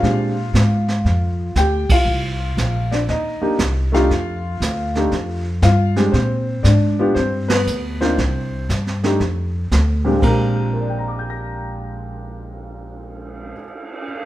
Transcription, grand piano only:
Already playing: F4 F5
0.03 G#3 C4 D4 G4
1.57 G4 G5
1.92 F4 F5
2.91 D4 D5
3.09 D#4 D#5
3.42 A#3 D4 D#4 G4
3.92 A3 D4 D#4 G4 F5
3.96 F4
4.96 A3 D4 D#4 G4
5.63 F4 F5
5.96 G#3 C4 D4 G4
6.12 C4 C5
6.63 D4 D5
6.99 B3 D4 F4 G4
7.15 C4 C5
7.48 B3 B4
8.01 A#3 C4 D4 D#4 F4 C5
9.04 A3 D4 D#4 G4
10.05 A#2 G#3 C4 D4 G4
10.16 A#2 G#3
10.22 C4 D4 A#4
10.28 G4
10.73 A#4
10.81 D5
10.89 G5
10.99 A#5
11.08 D6
11.19 G6
11.30 A#6

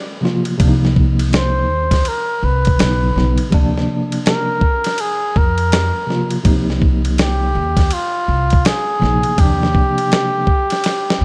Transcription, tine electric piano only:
0.21 C3 F3 A#3 F4
0.58 C3 F3 A#3 D4
0.68 D#4
2.77 C#3 F#3 B3 D#4
3.14 C#3 F#3 B3 D#4
3.50 C3 F3 A#3 D4
6.07 C3 F3 A#3 F4
6.43 C3 F3 A#3 D#4
8.99 C3 F3 A#3 D#4
9.36 C3 F3 A#3 D4

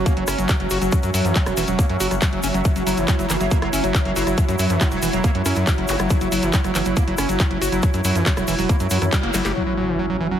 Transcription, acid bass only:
0.06 A#3
0.17 F#3
0.28 C#4
0.38 F#3
0.49 F#3
0.60 F#3
0.71 F#4
0.82 F#3
0.92 F#3
1.03 F#3
1.14 F#3
1.25 E3
1.36 F#3
1.46 F#3
1.57 E3
1.68 F#3
1.79 A#3
1.90 F#3
2.00 F#4
2.11 F#3
2.22 F#3
2.33 F#3
2.43 C#4
2.54 F#3
2.65 F#3
2.76 F#3
2.87 F#3
2.97 E3
3.08 F#3
3.19 F#3
3.30 E3
3.41 F#3
3.51 A#3
3.62 F#3
3.73 C#4
3.84 F#3
3.95 F#3
4.05 F#3
4.16 F#4
4.27 F#3
4.38 F#3
4.48 F#3
4.59 F#3
4.70 E3
4.81 F#3
4.92 F#3
5.03 E3
5.13 F#3
5.24 A#3
5.35 F#3
5.46 C#4
5.56 F#3
5.67 F#3
5.78 F#3
5.89 F#4
6.00 F#3
6.10 F#3
6.21 F#3
6.32 F#3
6.43 E3
6.54 F#3
6.64 F#3
6.75 E3
6.86 F#3
6.97 A#3
7.07 F#3
7.18 C#4
7.29 F#3
7.40 F#3
7.51 F#3
7.61 F#4
7.72 F#3
7.83 F#3
7.94 F#3
8.05 F#3
8.15 E3
8.26 F#3
8.37 F#3
8.48 E3
8.59 F#3
8.69 A#3
8.80 F#3
8.91 F#3
9.02 E3
9.13 G3
9.23 A#3
9.34 F#3
9.45 G4
9.56 F#3
9.67 F#3
9.77 F#3
9.88 E3
9.99 F#3
10.10 F#3
10.20 E3
10.31 F#3

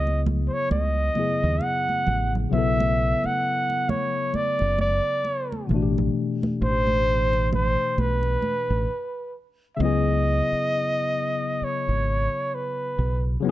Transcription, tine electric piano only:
Already playing: C#3 F#3 B3 E4 G#4
1.15 C#3 F#3 B3 E4
1.19 G#4
2.49 C#3 F#3
2.53 B3 E4
2.58 A4
5.67 B2 E3
5.72 A3 D4
5.76 F#4
5.83 G4
9.77 C#3 F#3
9.81 B3 E4
9.85 G#4
13.40 C#3 F#3
13.45 B3 E4

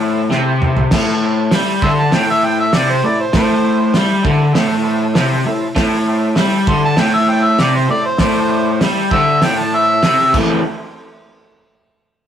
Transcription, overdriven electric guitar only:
Already playing: A2
0.31 C3
0.92 A2
1.52 G3
1.83 D3
2.12 A2
2.74 C3
3.04 A2
3.34 A2
3.95 G3
4.25 D3
4.55 A2
5.15 C3
5.46 A2
5.75 A2
6.37 G3
6.67 D3
6.97 A2
7.59 C3
7.90 A2
8.20 A2
8.81 G3
9.12 D3
9.42 A2
10.03 C3
10.33 A2 E3 A3 C4 E4

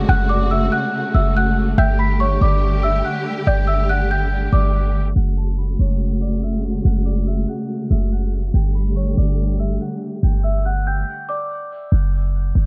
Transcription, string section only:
Already playing: C#3 G#3 A3 F#4
1.78 D3 G3 G4
5.16 C#3 G#3 A3 F#4
8.54 D3 G3 A3 G4

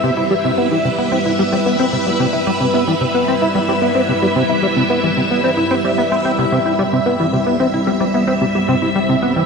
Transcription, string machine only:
Already playing: G3 E4 C5 E5
0.34 B4
6.52 G3
6.93 E4
7.14 C4

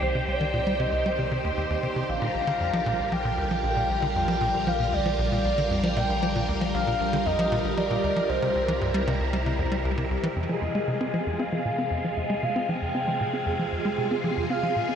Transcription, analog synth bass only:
0.02 C2
0.15 C3
0.28 C2
0.41 D#3
0.53 A#2
0.67 G3
0.80 C3
0.92 C2
1.06 G3
1.19 C3
1.31 C3
1.44 D#2
1.57 D#2
1.70 D#2
1.83 C3
1.96 C3
2.09 A#1
2.22 A#2
2.34 A#1
2.47 D3
2.60 F2
2.73 F3
2.86 A#2
2.99 A#1
3.12 F3
3.25 A#2
3.38 D2
3.51 F3
3.64 A#1
3.76 A#2
3.89 A#1
4.02 D3
4.15 F2
4.28 F3
4.41 A#2
4.54 A#1
4.67 F3
4.80 A#2
4.93 D2
5.06 F3
5.19 A#1
5.32 A#2
5.45 A#1
5.58 D3
5.71 F2
5.83 F3
5.96 A#2
6.09 A#1
6.23 F3
6.35 A#2
6.48 D2
6.61 F3
6.74 A#1
6.87 A#2
7.00 A#1
7.13 D3
7.26 F2
7.39 F3
7.52 A#2
7.65 A#1
7.77 F3
7.91 A#2
8.04 D2
8.16 F3
8.29 C2
8.42 C3
8.55 C2
8.68 E3
8.81 G2
8.94 G3
9.07 C3
9.20 C2
9.33 G3
9.46 C3
9.59 E2
9.72 G3
9.85 C2
9.97 C3
10.11 C2
10.23 E3
10.36 F2
10.49 F3
10.62 F2
10.75 G#3
10.88 C3
11.01 C4
11.14 F3
11.27 F2
11.39 C4
11.52 F3
11.65 A#2
11.78 C4
11.91 F2
12.04 F3
12.17 F2
12.30 G#3
12.43 C3
12.56 C4
12.69 F3
12.82 F2
12.95 C4
13.08 F3
13.21 A#2
13.33 C4
13.46 F2
13.59 F3
13.72 F2
13.85 G#3
13.98 C3
14.11 C4
14.24 F3
14.37 F2
14.50 C4
14.63 F3
14.76 A#2
14.89 C4

